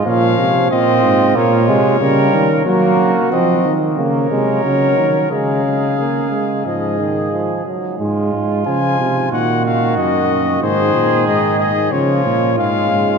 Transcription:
0.06 0.38 A#2 medium
0.06 0.70 F3 medium
0.06 0.70 C#4 medium
0.06 0.70 F5 medium
0.38 0.70 C3 medium
0.71 1.06 A#2 medium
0.71 1.37 C4 medium
0.71 1.99 F4 medium
0.71 1.38 D#5 medium
1.04 1.36 G#2 medium
1.36 1.70 A#2 medium
1.36 1.68 A#3 medium
1.36 2.65 C#5 medium
1.69 2.00 C3 medium
1.69 2.00 G#3 medium
2.01 2.33 C#3 medium
2.01 2.50 G3 medium
2.01 2.65 A#4 medium
2.34 2.65 D#3 medium
2.66 3.15 F#3 medium
2.66 3.34 A#3 loud
2.66 3.67 F#4 medium
2.66 3.30 A#4 medium
3.32 3.64 F3 medium
3.32 3.75 C4 medium
3.32 3.74 D#5 medium
3.64 3.99 D#3 medium
3.97 4.30 C#3 medium
3.97 4.28 A#3 medium
3.97 5.27 A#4 medium
3.97 5.27 C#5 medium
4.30 4.63 C3 medium
4.30 4.63 G#3 medium
4.64 4.97 C#3 medium
4.64 5.30 F#3 medium
4.98 5.31 D#3 medium
5.31 6.35 C#3 medium
5.31 5.65 G#3 medium
5.31 6.62 G#4 medium
5.31 6.67 F5 medium
5.66 5.98 G#3 medium
5.99 6.31 A#3 medium
6.32 6.65 G#3 medium
6.66 7.62 G#2 medium
6.66 7.01 F3 medium
6.66 7.64 G#4 medium
6.66 7.66 D#5 medium
6.99 7.32 D#3 medium
7.32 7.65 F3 medium
7.66 7.99 F#3 medium
7.99 8.31 G#2 medium
7.99 8.62 G#3 medium
7.99 9.33 F4 medium
8.34 8.66 G#2 medium
8.66 8.98 C#3 medium
8.66 9.30 F3 medium
8.66 9.28 G#5 medium
9.00 9.31 C3 medium
9.31 9.99 A#2 medium
9.31 10.60 D#3 medium
9.31 10.62 F#4 medium
9.31 9.64 F#5 medium
9.65 9.97 F5 medium
9.98 10.62 F#2 medium
9.98 10.61 D#5 medium
10.62 10.94 G#2 medium
10.62 11.76 D#3 medium
10.62 11.90 G#4 medium
10.62 11.26 C5 medium
10.94 11.27 A#2 medium
11.27 11.91 G#2 medium
11.27 11.59 D#5 medium
11.59 11.93 D#5 medium
11.92 12.25 C#3 medium
11.92 12.57 F3 medium
11.92 13.18 F4 medium
11.92 12.58 C#5 medium
12.25 12.60 A#2 medium
12.58 12.91 G#2 medium
12.58 13.18 G#3 medium
12.58 13.18 F5 medium
12.91 13.18 G#2 medium

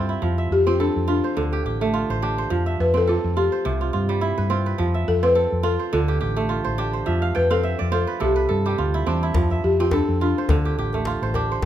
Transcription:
0.00 0.15 G2 medium
0.00 0.27 C3 medium
0.00 0.27 G3 medium
0.00 0.66 C4 medium
0.00 0.44 F4 medium
0.00 0.92 G4 medium
0.00 0.67 A4 medium
0.00 0.26 C5 medium
0.09 1.14 E4 medium
0.09 djembe slap soft
0.22 0.46 F2 medium
0.22 1.41 F3 medium
0.38 1.14 E5 medium
0.51 0.88 F2 medium
0.51 0.68 G4 medium
0.67 2.47 C4 medium
0.67 0.73 F4 medium
0.80 0.93 D4 medium
0.80 2.12 A4 medium
0.96 1.20 F2 medium
1.08 2.19 D4 medium
1.08 1.93 F4 medium
1.24 2.10 C5 medium
1.37 1.61 D2 medium
1.37 2.56 D3 medium
1.53 1.65 G4 medium
1.65 2.02 A1 medium
1.65 2.22 G4 medium
1.81 3.81 A3 medium
1.94 2.72 F4 medium
2.10 2.44 A1 medium
2.10 2.38 C5 medium
2.22 3.90 D4 medium
2.22 3.64 G4 medium
2.38 3.52 C5 medium
2.50 2.75 F2 medium
2.50 3.70 F3 medium
2.66 3.43 E5 medium
2.80 3.17 F2 medium
2.80 2.96 B4 loud
2.94 4.44 C4 medium
2.94 3.09 A4 loud
3.07 3.38 F4 medium
3.07 4.39 A4 medium
3.24 3.48 F2 medium
3.36 3.80 F4 medium
3.36 4.47 G4 medium
3.52 4.44 C5 medium
3.65 3.89 C2 medium
3.65 4.84 C3 medium
3.81 3.93 F4 medium
3.93 4.31 G2 medium
3.93 4.49 F4 medium
4.09 4.84 G3 medium
4.21 4.84 E4 medium
4.38 4.73 G2 medium
4.38 4.66 B4 medium
4.50 5.22 C4 medium
4.50 5.00 F4 medium
4.66 5.29 B4 medium
4.78 5.03 F2 loud
4.78 5.98 F3 medium
4.94 5.69 E5 medium
5.08 5.45 F2 medium
5.08 5.24 A4 loud
5.23 7.03 C4 medium
5.23 5.66 B4 loud
5.35 6.67 A4 medium
5.52 5.76 F2 medium
5.63 6.49 F4 medium
5.63 5.91 A4 medium
5.79 6.64 C5 medium
5.93 6.17 D2 medium
5.93 7.12 D3 medium
5.93 6.75 F4 medium
6.08 6.20 G4 medium
6.21 6.59 A1 medium
6.21 6.78 G4 medium
6.36 8.36 A3 medium
6.49 7.12 F4 medium
6.64 7.01 A1 medium
6.64 6.93 C5 medium
6.78 8.46 D4 medium
6.78 8.19 G4 medium
6.93 7.91 C5 medium
7.06 7.31 F2 loud
7.06 8.26 F3 medium
7.06 7.57 E5 medium
7.22 7.50 F5 medium
7.35 7.73 F2 medium
7.35 7.43 B4 loud
7.35 8.28 G5 medium
7.50 8.13 C4 medium
7.50 7.92 A4 medium
7.50 8.50 F5 medium
7.63 7.98 E5 medium
7.79 8.04 F2 medium
7.79 8.90 D5 medium
7.92 8.78 F4 medium
7.92 8.06 A4 medium
7.92 8.42 C5 medium
8.07 8.35 B4 medium
8.20 8.45 C2 medium
8.20 9.40 C3 medium
8.20 9.04 G4 medium
8.20 8.48 A4 medium
8.36 9.12 B4 medium
8.49 8.74 G2 medium
8.49 9.80 A4 medium
8.66 9.40 G3 medium
8.66 10.07 G4 medium
8.78 9.04 D2 medium
8.78 9.29 F4 medium
8.94 9.22 E4 medium
9.06 9.32 E2 medium
9.06 9.80 C4 medium
9.06 10.75 D4 medium
9.23 10.27 E4 medium
9.34 9.59 F2 medium
9.34 10.54 F3 medium
9.34 djembe slap medium
9.34 djembe bass medium
9.50 10.27 E5 medium
9.50 djembe tone soft
9.63 10.01 F2 medium
9.63 9.79 G4 medium
9.63 djembe slap soft
9.80 11.60 C4 medium
9.80 9.93 F4 medium
9.91 10.06 D4 medium
9.91 11.25 A4 medium
9.91 djembe slap medium
9.91 djembe tone medium
10.09 10.32 F2 medium
10.21 11.31 D4 medium
10.21 11.07 F4 medium
10.38 11.22 C5 medium
10.49 10.73 D2 loud
10.49 11.65 D3 medium
10.49 djembe slap medium
10.49 djembe tone medium
10.49 djembe bass medium
10.65 10.78 G4 medium
10.78 11.15 A1 medium
10.78 11.35 G4 medium
10.93 11.65 A3 medium
10.93 djembe tone medium
11.05 11.65 F4 medium
11.05 djembe slap medium
11.22 11.56 A1 medium
11.22 11.51 C5 medium
11.34 11.65 D4 medium
11.34 11.65 G4 medium
11.34 djembe tone medium
11.52 11.65 C5 medium

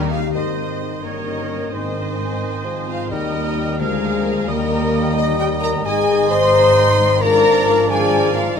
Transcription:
0.00 0.26 D#2 medium
0.00 0.26 D#3 medium
0.00 0.36 D#3 medium
0.00 0.11 G3 medium
0.00 0.11 A#3 medium
0.00 0.34 A#3 medium
0.00 0.36 A#3 medium
0.00 0.34 D#4 medium
0.00 0.79 D#4 medium
0.00 0.10 G4 medium
0.00 0.36 G4 medium
0.00 0.10 A#4 medium
0.00 0.11 A#4 medium
0.00 0.21 D#5 medium
0.10 0.21 F4 medium
0.10 0.36 A#4 medium
0.10 0.32 F5 medium
0.10 0.33 F5 medium
0.22 3.81 D#5 medium
0.34 1.00 G#1 soft
0.34 1.06 G#2 soft
0.34 1.00 G#2 soft
0.34 3.07 D#3 soft
0.34 1.00 D#3 soft
0.34 1.00 C4 soft
0.34 1.03 D#4 medium
0.34 1.00 C5 soft
0.34 1.01 C5 soft
0.34 1.05 D#5 soft
0.34 1.03 D#5 soft
0.34 1.00 D#5 soft
0.58 1.06 C4 soft
0.80 1.49 D#4 soft
0.80 1.06 G#4 soft
1.03 1.73 G1 soft
1.03 1.75 G2 soft
1.03 1.73 G2 soft
1.03 1.72 D#3 soft
1.03 1.73 A#3 medium
1.03 1.70 C#4 soft
1.03 1.73 A#4 medium
1.03 1.73 A#4 soft
1.03 1.73 C#5 soft
1.03 1.74 C#5 soft
1.03 1.72 D#5 soft
1.27 1.75 C#4 soft
1.50 2.18 D#4 soft
1.50 1.75 A#4 soft
1.73 3.09 G#1 medium
1.73 3.13 G#2 soft
1.73 3.09 G#2 soft
1.73 2.67 D#3 soft
1.73 2.64 C4 medium
1.73 3.08 C4 soft
1.73 3.11 C5 soft
1.73 2.63 C5 medium
1.73 3.09 C5 soft
1.73 2.64 C5 medium
1.73 3.09 D#5 soft
1.73 3.11 G#5 soft
1.96 2.86 C4 soft
2.19 3.33 D#4 soft
2.42 3.13 C5 soft
2.65 3.11 F3 soft
2.65 3.13 G#4 soft
2.88 3.13 C4 soft
2.88 3.09 F4 medium
2.88 3.10 F5 medium
3.11 3.80 D#2 medium
3.11 3.82 D#3 medium
3.11 3.81 G3 medium
3.11 3.76 G3 medium
3.11 5.82 A#3 medium
3.11 3.80 D#4 medium
3.11 3.79 A#4 medium
3.11 3.78 D#5 medium
3.11 3.82 D#5 medium
3.11 3.79 D#5 medium
3.11 3.79 G5 medium
3.34 3.56 D#4 soft
3.57 3.82 D#4 soft
3.57 3.82 G4 soft
3.80 4.48 D2 medium
3.80 4.50 D3 medium
3.80 4.47 F3 medium
3.80 4.45 F3 medium
3.80 4.47 G#3 medium
3.80 4.47 G#4 medium
3.80 4.47 A#4 medium
3.80 4.48 F5 medium
3.80 4.47 F5 medium
4.02 5.87 A#3 soft
4.25 4.50 F4 soft
4.25 5.38 A#4 medium
4.48 5.83 D#2 medium
4.48 5.87 D#3 medium
4.48 5.83 G3 medium
4.48 5.82 G3 medium
4.48 5.17 A#3 loud
4.48 5.16 A#4 medium
4.48 5.17 A#4 medium
4.48 5.83 D#5 medium
4.48 5.84 D#5 medium
4.48 5.83 G5 medium
4.71 5.60 D#4 soft
4.93 5.87 G4 medium
5.16 5.39 D#4 loud
5.16 5.39 D#5 medium
5.16 5.25 D#5 medium
5.39 5.50 G4 loud
5.39 5.87 A#4 medium
5.39 5.45 G5 medium
5.39 5.48 G5 medium
5.62 6.29 D#4 medium
5.62 5.85 A#4 loud
5.62 5.70 A#5 medium
5.62 5.87 A#5 medium
5.85 8.53 G#1 medium
5.85 7.20 G#2 medium
5.85 8.53 G#2 medium
5.85 7.17 D#3 medium
5.85 6.92 G#3 medium
5.85 7.17 D#4 medium
5.85 6.30 G#4 loud
5.85 6.92 D#5 medium
5.85 7.19 D#5 medium
5.85 6.30 G#5 loud
5.85 6.74 G#5 medium
5.85 6.30 G#5 loud
6.08 6.97 G#3 medium
6.30 6.74 D#4 medium
6.30 7.19 C5 loud
6.30 7.23 C6 loud
6.30 7.21 C6 loud
6.53 8.59 G#4 medium
6.76 7.23 D#4 medium
6.76 7.21 G5 medium
6.98 8.59 G#3 medium
7.21 8.59 G#2 medium
7.21 7.86 F3 medium
7.21 8.41 F3 medium
7.21 8.41 D4 medium
7.21 7.88 A#4 loud
7.21 7.88 A#4 medium
7.21 7.88 D5 medium
7.21 7.86 D5 medium
7.21 7.89 F5 medium
7.21 7.88 A#5 loud
7.21 7.91 A#5 loud
7.44 8.33 A#3 medium
7.67 8.59 D4 medium
7.89 8.56 F3 medium
7.89 8.34 G#4 loud
7.89 8.60 A#4 medium
7.89 8.56 A#4 medium
7.89 8.56 D5 medium
7.89 8.57 D5 medium
7.89 8.56 F5 medium
7.89 8.36 G#5 medium
7.89 8.34 G#5 loud
8.12 8.59 F4 medium
8.34 8.60 A#3 medium
8.34 8.57 F4 medium
8.34 8.57 F5 medium
8.34 8.58 F5 medium
8.57 8.60 D#4 loud
8.57 8.60 D#5 medium

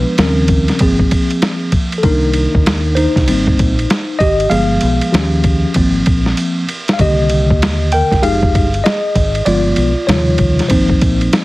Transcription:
0.00 0.15 F3 medium
0.00 0.15 G#3 soft
0.00 0.15 B3 medium
0.00 0.15 D4 medium
0.00 0.14 B4 medium
0.18 0.69 D#2 loud
0.18 0.77 C#3 medium
0.18 0.77 F3 medium
0.18 0.78 G3 soft
0.18 0.78 C4 medium
0.18 0.77 C#4 medium
0.18 0.83 A#4 medium
0.18 snare loud
0.18 hi-hat pedal soft
0.18 ride medium
0.48 kick medium
0.48 ride medium
0.68 snare soft
0.68 ride soft
0.79 1.06 G#1 loud
0.79 2.00 F3 medium
0.79 2.00 A#3 soft
0.79 1.70 C4 medium
0.79 1.70 G#4 medium
0.79 kick medium
0.79 ride medium
0.99 kick medium
1.11 kick medium
1.11 ride medium
1.31 ride soft
1.42 snare loud
1.42 hi-hat pedal soft
1.42 ride medium
1.72 kick medium
1.72 ride medium
1.92 ride soft
1.98 2.03 A4 medium
2.03 2.45 C2 loud
2.03 3.23 D#3 medium
2.03 3.24 A#3 soft
2.03 3.24 D4 medium
2.03 2.93 D#4 medium
2.03 2.99 A#4 medium
2.03 kick loud
2.03 ride medium
2.33 ride medium
2.55 3.06 D#2 medium
2.55 kick medium
2.66 snare loud
2.66 hi-hat pedal soft
2.66 ride medium
2.95 4.17 D#4 medium
2.95 4.23 C5 medium
2.95 ride medium
3.16 3.25 C2 medium
3.16 kick medium
3.16 snare soft
3.16 ride soft
3.27 3.53 G#1 loud
3.27 3.72 G3 medium
3.27 3.72 A#3 medium
3.27 3.73 C4 medium
3.27 ride medium
3.47 kick medium
3.59 3.85 A#1 medium
3.59 kick medium
3.59 ride medium
3.79 ride soft
3.90 snare loud
3.90 hi-hat pedal soft
3.90 ride medium
4.19 4.46 G#1 medium
4.19 4.49 G4 medium
4.19 4.51 D#5 loud
4.19 kick medium
4.19 ride medium
4.40 ride soft
4.49 4.77 G1 loud
4.49 5.09 F3 medium
4.49 5.09 G#3 soft
4.49 5.10 B3 medium
4.49 5.71 G#4 medium
4.49 5.70 F5 medium
4.49 ride medium
4.81 4.99 B1 medium
4.81 ride medium
5.01 ride soft
5.12 5.64 D#2 loud
5.12 5.71 F3 medium
5.12 5.72 C#4 medium
5.12 5.71 G4 medium
5.12 snare loud
5.12 hi-hat pedal soft
5.12 ride medium
5.44 kick medium
5.44 ride medium
5.74 6.01 G#1 medium
5.74 6.63 F3 medium
5.74 6.64 A#3 soft
5.74 6.64 C4 medium
5.74 kick medium
5.74 ride medium
6.06 6.32 A#1 medium
6.06 kick medium
6.06 ride medium
6.26 snare soft
6.37 hi-hat pedal soft
6.37 ride medium
6.69 ride medium
6.88 snare medium
6.88 ride soft
6.93 6.98 F5 medium
6.99 7.51 C2 loud
6.99 8.20 D3 medium
6.99 8.19 D#3 medium
6.99 8.20 A#3 soft
6.99 7.89 G4 medium
6.99 7.95 D#5 medium
6.99 kick loud
6.99 ride medium
7.29 ride medium
7.50 8.01 D#2 medium
7.50 kick medium
7.62 snare loud
7.62 hi-hat pedal soft
7.62 ride medium
7.92 8.21 A#4 medium
7.92 8.24 G5 medium
7.92 ride medium
8.11 8.21 C2 medium
8.11 kick medium
8.11 snare soft
8.11 ride soft
8.22 8.55 F1 medium
8.22 8.67 G#3 soft
8.22 8.68 D#4 medium
8.22 8.67 G4 medium
8.22 8.81 G#4 medium
8.22 8.86 F5 loud
8.22 ride medium
8.43 kick medium
8.55 8.80 G1 medium
8.55 kick loud
8.55 ride medium
8.74 ride soft
8.84 9.42 G#4 medium
8.84 9.48 D#5 medium
8.84 snare loud
8.84 hi-hat pedal soft
8.84 ride medium
9.15 9.41 G#1 medium
9.15 kick medium
9.15 ride medium
9.35 ride soft
9.45 9.72 G1 loud
9.45 9.90 F3 medium
9.45 9.91 G#3 soft
9.45 9.91 B3 medium
9.45 10.05 F4 medium
9.45 10.09 D5 medium
9.45 ride medium
9.76 9.93 B1 medium
9.76 ride medium
10.07 10.59 D#2 medium
10.07 10.67 C3 medium
10.07 10.67 C#3 medium
10.07 10.67 F3 soft
10.07 10.67 G3 soft
10.07 10.66 F4 medium
10.07 10.65 C#5 medium
10.07 snare loud
10.07 hi-hat pedal medium
10.07 ride medium
10.38 kick medium
10.38 ride medium
10.59 snare soft
10.59 ride soft
10.68 10.96 G#1 loud
10.68 11.45 F3 medium
10.68 11.45 A#3 soft
10.68 11.45 C4 medium
10.68 11.45 D#4 medium
10.68 11.45 C5 medium
10.68 kick medium
10.68 ride medium
10.89 kick medium
11.01 11.27 A#1 medium
11.01 kick medium
11.01 ride medium
11.21 ride soft
11.33 snare loud
11.33 hi-hat pedal soft
11.33 ride medium

